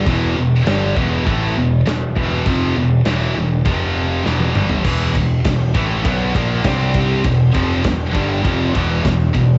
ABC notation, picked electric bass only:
X:1
M:4/4
L:1/8
Q:1/4=100
K:Ephr
V:1 name="Picked electric bass" clef=bass
E,,, E,,, G,,, E,,, A,,, E,,, E,,, E,,, | F,,, E,,, E,,, E,,, F,,,2 E,,, G,,, | E,,, E,,, E,,, A,,, B,,, ^A,,, C,,2 | E,,, F,,, E,,, G,,, F,,, E,,, E,,, E,,, |]